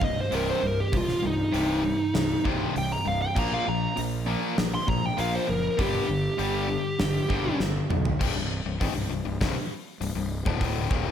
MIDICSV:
0, 0, Header, 1, 5, 480
1, 0, Start_track
1, 0, Key_signature, -3, "minor"
1, 0, Tempo, 607903
1, 735, Time_signature, 4, 2, 24, 8
1, 5052, Tempo, 600601
1, 8820, End_track
2, 0, Start_track
2, 0, Title_t, "Lead electric guitar"
2, 0, Program_c, 0, 29
2, 37, Note_on_c, 0, 75, 100
2, 142, Note_off_c, 0, 75, 0
2, 163, Note_on_c, 0, 72, 93
2, 265, Note_off_c, 0, 72, 0
2, 280, Note_on_c, 0, 70, 98
2, 384, Note_off_c, 0, 70, 0
2, 401, Note_on_c, 0, 72, 95
2, 525, Note_off_c, 0, 72, 0
2, 525, Note_on_c, 0, 70, 108
2, 627, Note_off_c, 0, 70, 0
2, 634, Note_on_c, 0, 67, 93
2, 764, Note_off_c, 0, 67, 0
2, 764, Note_on_c, 0, 65, 104
2, 984, Note_off_c, 0, 65, 0
2, 1000, Note_on_c, 0, 63, 104
2, 1922, Note_off_c, 0, 63, 0
2, 2195, Note_on_c, 0, 79, 113
2, 2303, Note_off_c, 0, 79, 0
2, 2307, Note_on_c, 0, 82, 89
2, 2419, Note_off_c, 0, 82, 0
2, 2428, Note_on_c, 0, 77, 108
2, 2539, Note_off_c, 0, 77, 0
2, 2542, Note_on_c, 0, 79, 120
2, 2657, Note_off_c, 0, 79, 0
2, 2674, Note_on_c, 0, 82, 106
2, 2783, Note_off_c, 0, 82, 0
2, 2792, Note_on_c, 0, 77, 89
2, 2902, Note_off_c, 0, 77, 0
2, 2910, Note_on_c, 0, 82, 107
2, 3137, Note_off_c, 0, 82, 0
2, 3746, Note_on_c, 0, 84, 109
2, 3858, Note_off_c, 0, 84, 0
2, 3867, Note_on_c, 0, 82, 95
2, 3992, Note_off_c, 0, 82, 0
2, 3992, Note_on_c, 0, 79, 84
2, 4101, Note_off_c, 0, 79, 0
2, 4108, Note_on_c, 0, 77, 97
2, 4218, Note_off_c, 0, 77, 0
2, 4228, Note_on_c, 0, 72, 87
2, 4338, Note_off_c, 0, 72, 0
2, 4342, Note_on_c, 0, 70, 102
2, 4571, Note_off_c, 0, 70, 0
2, 4588, Note_on_c, 0, 67, 105
2, 5991, Note_off_c, 0, 67, 0
2, 8820, End_track
3, 0, Start_track
3, 0, Title_t, "Distorted electric guitar"
3, 0, Program_c, 1, 30
3, 13, Note_on_c, 1, 36, 76
3, 14, Note_on_c, 1, 43, 71
3, 229, Note_off_c, 1, 36, 0
3, 230, Note_off_c, 1, 43, 0
3, 252, Note_on_c, 1, 36, 83
3, 259, Note_on_c, 1, 43, 81
3, 263, Note_on_c, 1, 48, 97
3, 479, Note_off_c, 1, 36, 0
3, 483, Note_off_c, 1, 43, 0
3, 484, Note_off_c, 1, 48, 0
3, 490, Note_on_c, 1, 36, 68
3, 494, Note_on_c, 1, 43, 80
3, 709, Note_off_c, 1, 36, 0
3, 711, Note_off_c, 1, 43, 0
3, 730, Note_on_c, 1, 36, 78
3, 732, Note_on_c, 1, 43, 83
3, 949, Note_off_c, 1, 36, 0
3, 950, Note_off_c, 1, 43, 0
3, 968, Note_on_c, 1, 36, 71
3, 971, Note_on_c, 1, 43, 72
3, 1188, Note_off_c, 1, 36, 0
3, 1190, Note_off_c, 1, 43, 0
3, 1204, Note_on_c, 1, 36, 90
3, 1207, Note_on_c, 1, 43, 89
3, 1216, Note_on_c, 1, 48, 96
3, 1436, Note_off_c, 1, 36, 0
3, 1438, Note_off_c, 1, 43, 0
3, 1442, Note_off_c, 1, 48, 0
3, 1448, Note_on_c, 1, 36, 73
3, 1452, Note_on_c, 1, 43, 84
3, 1669, Note_off_c, 1, 36, 0
3, 1671, Note_off_c, 1, 43, 0
3, 1691, Note_on_c, 1, 43, 84
3, 1692, Note_on_c, 1, 36, 68
3, 1911, Note_off_c, 1, 36, 0
3, 1911, Note_off_c, 1, 43, 0
3, 1930, Note_on_c, 1, 36, 90
3, 1935, Note_on_c, 1, 43, 97
3, 1939, Note_on_c, 1, 48, 96
3, 2160, Note_off_c, 1, 36, 0
3, 2162, Note_off_c, 1, 43, 0
3, 2165, Note_off_c, 1, 48, 0
3, 2170, Note_on_c, 1, 36, 77
3, 2174, Note_on_c, 1, 43, 82
3, 2391, Note_off_c, 1, 36, 0
3, 2392, Note_off_c, 1, 43, 0
3, 2410, Note_on_c, 1, 36, 69
3, 2411, Note_on_c, 1, 43, 82
3, 2630, Note_off_c, 1, 36, 0
3, 2631, Note_off_c, 1, 43, 0
3, 2647, Note_on_c, 1, 46, 93
3, 2652, Note_on_c, 1, 53, 101
3, 2658, Note_on_c, 1, 58, 96
3, 2878, Note_off_c, 1, 46, 0
3, 2881, Note_off_c, 1, 53, 0
3, 2884, Note_off_c, 1, 58, 0
3, 2890, Note_on_c, 1, 46, 68
3, 2894, Note_on_c, 1, 53, 86
3, 3110, Note_off_c, 1, 46, 0
3, 3112, Note_off_c, 1, 53, 0
3, 3126, Note_on_c, 1, 46, 75
3, 3131, Note_on_c, 1, 53, 82
3, 3348, Note_off_c, 1, 46, 0
3, 3350, Note_off_c, 1, 53, 0
3, 3365, Note_on_c, 1, 46, 96
3, 3371, Note_on_c, 1, 53, 89
3, 3376, Note_on_c, 1, 58, 109
3, 3597, Note_off_c, 1, 46, 0
3, 3600, Note_off_c, 1, 53, 0
3, 3602, Note_off_c, 1, 58, 0
3, 3608, Note_on_c, 1, 46, 77
3, 3608, Note_on_c, 1, 53, 91
3, 3828, Note_off_c, 1, 46, 0
3, 3828, Note_off_c, 1, 53, 0
3, 3844, Note_on_c, 1, 46, 73
3, 3851, Note_on_c, 1, 53, 77
3, 4066, Note_off_c, 1, 46, 0
3, 4069, Note_off_c, 1, 53, 0
3, 4083, Note_on_c, 1, 46, 80
3, 4087, Note_on_c, 1, 53, 86
3, 4094, Note_on_c, 1, 58, 82
3, 4308, Note_off_c, 1, 46, 0
3, 4310, Note_off_c, 1, 53, 0
3, 4317, Note_on_c, 1, 46, 75
3, 4320, Note_off_c, 1, 58, 0
3, 4320, Note_on_c, 1, 53, 75
3, 4542, Note_off_c, 1, 46, 0
3, 4543, Note_off_c, 1, 53, 0
3, 4557, Note_on_c, 1, 43, 85
3, 4564, Note_on_c, 1, 50, 92
3, 4566, Note_on_c, 1, 55, 96
3, 4790, Note_off_c, 1, 43, 0
3, 4794, Note_off_c, 1, 50, 0
3, 4795, Note_off_c, 1, 55, 0
3, 4801, Note_on_c, 1, 43, 77
3, 4803, Note_on_c, 1, 50, 82
3, 5022, Note_off_c, 1, 43, 0
3, 5023, Note_off_c, 1, 50, 0
3, 5037, Note_on_c, 1, 43, 91
3, 5043, Note_on_c, 1, 50, 88
3, 5045, Note_on_c, 1, 55, 112
3, 5271, Note_off_c, 1, 43, 0
3, 5274, Note_off_c, 1, 50, 0
3, 5275, Note_off_c, 1, 55, 0
3, 5285, Note_on_c, 1, 50, 80
3, 5286, Note_on_c, 1, 43, 74
3, 5506, Note_off_c, 1, 43, 0
3, 5506, Note_off_c, 1, 50, 0
3, 5530, Note_on_c, 1, 43, 86
3, 5536, Note_on_c, 1, 50, 98
3, 5749, Note_off_c, 1, 43, 0
3, 5752, Note_off_c, 1, 50, 0
3, 5762, Note_on_c, 1, 43, 92
3, 5773, Note_on_c, 1, 50, 89
3, 5775, Note_on_c, 1, 55, 94
3, 5995, Note_off_c, 1, 43, 0
3, 6000, Note_off_c, 1, 50, 0
3, 6002, Note_off_c, 1, 55, 0
3, 6012, Note_on_c, 1, 43, 75
3, 6016, Note_on_c, 1, 50, 84
3, 6231, Note_off_c, 1, 43, 0
3, 6233, Note_off_c, 1, 50, 0
3, 6252, Note_on_c, 1, 43, 82
3, 6254, Note_on_c, 1, 50, 86
3, 6471, Note_off_c, 1, 43, 0
3, 6472, Note_off_c, 1, 50, 0
3, 6486, Note_on_c, 1, 36, 91
3, 6493, Note_on_c, 1, 43, 92
3, 6600, Note_off_c, 1, 36, 0
3, 6602, Note_off_c, 1, 43, 0
3, 6610, Note_on_c, 1, 36, 58
3, 6612, Note_on_c, 1, 43, 69
3, 6806, Note_off_c, 1, 36, 0
3, 6807, Note_off_c, 1, 43, 0
3, 6857, Note_on_c, 1, 36, 70
3, 6858, Note_on_c, 1, 43, 81
3, 6968, Note_off_c, 1, 36, 0
3, 6971, Note_on_c, 1, 44, 96
3, 6977, Note_off_c, 1, 43, 0
3, 6980, Note_on_c, 1, 51, 103
3, 7084, Note_off_c, 1, 44, 0
3, 7087, Note_off_c, 1, 51, 0
3, 7087, Note_on_c, 1, 36, 61
3, 7090, Note_on_c, 1, 43, 65
3, 7197, Note_off_c, 1, 36, 0
3, 7199, Note_off_c, 1, 43, 0
3, 7207, Note_on_c, 1, 36, 71
3, 7209, Note_on_c, 1, 43, 70
3, 7323, Note_off_c, 1, 36, 0
3, 7325, Note_off_c, 1, 43, 0
3, 7332, Note_on_c, 1, 36, 63
3, 7335, Note_on_c, 1, 43, 82
3, 7446, Note_off_c, 1, 36, 0
3, 7451, Note_off_c, 1, 43, 0
3, 7455, Note_on_c, 1, 36, 95
3, 7461, Note_on_c, 1, 43, 115
3, 7569, Note_off_c, 1, 36, 0
3, 7572, Note_off_c, 1, 43, 0
3, 7937, Note_on_c, 1, 36, 57
3, 7941, Note_on_c, 1, 43, 78
3, 8043, Note_off_c, 1, 36, 0
3, 8047, Note_off_c, 1, 43, 0
3, 8052, Note_on_c, 1, 36, 74
3, 8057, Note_on_c, 1, 43, 71
3, 8246, Note_off_c, 1, 36, 0
3, 8248, Note_off_c, 1, 43, 0
3, 8293, Note_on_c, 1, 38, 89
3, 8301, Note_on_c, 1, 45, 98
3, 8305, Note_on_c, 1, 50, 88
3, 8645, Note_off_c, 1, 38, 0
3, 8648, Note_on_c, 1, 39, 89
3, 8649, Note_off_c, 1, 45, 0
3, 8651, Note_off_c, 1, 50, 0
3, 8653, Note_on_c, 1, 46, 91
3, 8657, Note_on_c, 1, 51, 106
3, 8820, Note_off_c, 1, 39, 0
3, 8820, Note_off_c, 1, 46, 0
3, 8820, Note_off_c, 1, 51, 0
3, 8820, End_track
4, 0, Start_track
4, 0, Title_t, "Fingered electric bass"
4, 0, Program_c, 2, 33
4, 12, Note_on_c, 2, 24, 77
4, 158, Note_off_c, 2, 24, 0
4, 255, Note_on_c, 2, 24, 83
4, 400, Note_off_c, 2, 24, 0
4, 496, Note_on_c, 2, 24, 93
4, 641, Note_off_c, 2, 24, 0
4, 734, Note_on_c, 2, 24, 91
4, 880, Note_off_c, 2, 24, 0
4, 985, Note_on_c, 2, 24, 80
4, 1127, Note_off_c, 2, 24, 0
4, 1218, Note_on_c, 2, 24, 95
4, 1509, Note_off_c, 2, 24, 0
4, 1701, Note_on_c, 2, 24, 96
4, 1845, Note_off_c, 2, 24, 0
4, 1938, Note_on_c, 2, 24, 83
4, 2084, Note_off_c, 2, 24, 0
4, 2182, Note_on_c, 2, 24, 90
4, 2326, Note_off_c, 2, 24, 0
4, 2419, Note_on_c, 2, 24, 94
4, 2564, Note_off_c, 2, 24, 0
4, 2657, Note_on_c, 2, 34, 96
4, 2803, Note_off_c, 2, 34, 0
4, 2905, Note_on_c, 2, 34, 90
4, 3048, Note_off_c, 2, 34, 0
4, 3140, Note_on_c, 2, 34, 100
4, 3429, Note_off_c, 2, 34, 0
4, 3616, Note_on_c, 2, 34, 101
4, 3762, Note_off_c, 2, 34, 0
4, 3854, Note_on_c, 2, 34, 82
4, 4000, Note_off_c, 2, 34, 0
4, 4096, Note_on_c, 2, 34, 90
4, 4240, Note_off_c, 2, 34, 0
4, 4337, Note_on_c, 2, 30, 92
4, 4481, Note_off_c, 2, 30, 0
4, 4571, Note_on_c, 2, 31, 94
4, 4717, Note_off_c, 2, 31, 0
4, 4811, Note_on_c, 2, 31, 76
4, 4956, Note_off_c, 2, 31, 0
4, 5046, Note_on_c, 2, 31, 92
4, 5340, Note_off_c, 2, 31, 0
4, 5536, Note_on_c, 2, 31, 101
4, 5681, Note_off_c, 2, 31, 0
4, 5772, Note_on_c, 2, 31, 84
4, 5919, Note_off_c, 2, 31, 0
4, 6012, Note_on_c, 2, 31, 92
4, 6159, Note_off_c, 2, 31, 0
4, 6255, Note_on_c, 2, 35, 95
4, 6401, Note_off_c, 2, 35, 0
4, 6501, Note_on_c, 2, 24, 93
4, 6611, Note_off_c, 2, 24, 0
4, 6617, Note_on_c, 2, 24, 81
4, 6841, Note_off_c, 2, 24, 0
4, 6858, Note_on_c, 2, 24, 76
4, 6969, Note_off_c, 2, 24, 0
4, 6982, Note_on_c, 2, 32, 103
4, 7089, Note_off_c, 2, 32, 0
4, 7094, Note_on_c, 2, 24, 81
4, 7207, Note_off_c, 2, 24, 0
4, 7217, Note_on_c, 2, 24, 78
4, 7329, Note_off_c, 2, 24, 0
4, 7338, Note_on_c, 2, 24, 68
4, 7449, Note_off_c, 2, 24, 0
4, 7459, Note_on_c, 2, 24, 98
4, 7570, Note_off_c, 2, 24, 0
4, 7936, Note_on_c, 2, 24, 69
4, 8047, Note_off_c, 2, 24, 0
4, 8053, Note_on_c, 2, 24, 77
4, 8277, Note_off_c, 2, 24, 0
4, 8300, Note_on_c, 2, 26, 109
4, 8631, Note_off_c, 2, 26, 0
4, 8655, Note_on_c, 2, 27, 95
4, 8820, Note_off_c, 2, 27, 0
4, 8820, End_track
5, 0, Start_track
5, 0, Title_t, "Drums"
5, 12, Note_on_c, 9, 36, 83
5, 91, Note_off_c, 9, 36, 0
5, 252, Note_on_c, 9, 46, 63
5, 331, Note_off_c, 9, 46, 0
5, 733, Note_on_c, 9, 46, 54
5, 735, Note_on_c, 9, 36, 108
5, 812, Note_off_c, 9, 46, 0
5, 814, Note_off_c, 9, 36, 0
5, 856, Note_on_c, 9, 38, 32
5, 935, Note_off_c, 9, 38, 0
5, 1216, Note_on_c, 9, 46, 58
5, 1295, Note_off_c, 9, 46, 0
5, 1696, Note_on_c, 9, 46, 52
5, 1697, Note_on_c, 9, 38, 108
5, 1774, Note_off_c, 9, 46, 0
5, 1776, Note_off_c, 9, 38, 0
5, 1937, Note_on_c, 9, 36, 89
5, 2016, Note_off_c, 9, 36, 0
5, 2179, Note_on_c, 9, 46, 66
5, 2258, Note_off_c, 9, 46, 0
5, 2657, Note_on_c, 9, 36, 100
5, 2659, Note_on_c, 9, 49, 99
5, 2736, Note_off_c, 9, 36, 0
5, 2737, Note_off_c, 9, 49, 0
5, 3135, Note_on_c, 9, 46, 66
5, 3214, Note_off_c, 9, 46, 0
5, 3615, Note_on_c, 9, 46, 64
5, 3617, Note_on_c, 9, 38, 108
5, 3694, Note_off_c, 9, 46, 0
5, 3696, Note_off_c, 9, 38, 0
5, 3854, Note_on_c, 9, 36, 83
5, 3933, Note_off_c, 9, 36, 0
5, 4092, Note_on_c, 9, 46, 70
5, 4171, Note_off_c, 9, 46, 0
5, 4571, Note_on_c, 9, 36, 115
5, 4571, Note_on_c, 9, 46, 58
5, 4649, Note_off_c, 9, 46, 0
5, 4650, Note_off_c, 9, 36, 0
5, 5045, Note_on_c, 9, 46, 63
5, 5125, Note_off_c, 9, 46, 0
5, 5528, Note_on_c, 9, 46, 53
5, 5530, Note_on_c, 9, 38, 110
5, 5608, Note_off_c, 9, 46, 0
5, 5610, Note_off_c, 9, 38, 0
5, 5773, Note_on_c, 9, 36, 87
5, 5853, Note_off_c, 9, 36, 0
5, 6014, Note_on_c, 9, 38, 68
5, 6094, Note_off_c, 9, 38, 0
5, 6256, Note_on_c, 9, 45, 96
5, 6336, Note_off_c, 9, 45, 0
5, 6375, Note_on_c, 9, 43, 93
5, 6455, Note_off_c, 9, 43, 0
5, 6499, Note_on_c, 9, 36, 112
5, 6499, Note_on_c, 9, 49, 121
5, 6579, Note_off_c, 9, 36, 0
5, 6579, Note_off_c, 9, 49, 0
5, 6979, Note_on_c, 9, 46, 69
5, 6980, Note_on_c, 9, 36, 104
5, 7059, Note_off_c, 9, 46, 0
5, 7060, Note_off_c, 9, 36, 0
5, 7461, Note_on_c, 9, 36, 100
5, 7461, Note_on_c, 9, 46, 71
5, 7463, Note_on_c, 9, 38, 114
5, 7541, Note_off_c, 9, 36, 0
5, 7541, Note_off_c, 9, 46, 0
5, 7543, Note_off_c, 9, 38, 0
5, 7943, Note_on_c, 9, 46, 67
5, 8022, Note_off_c, 9, 46, 0
5, 8300, Note_on_c, 9, 36, 119
5, 8379, Note_off_c, 9, 36, 0
5, 8417, Note_on_c, 9, 46, 61
5, 8418, Note_on_c, 9, 36, 95
5, 8497, Note_off_c, 9, 46, 0
5, 8498, Note_off_c, 9, 36, 0
5, 8656, Note_on_c, 9, 36, 112
5, 8736, Note_off_c, 9, 36, 0
5, 8820, End_track
0, 0, End_of_file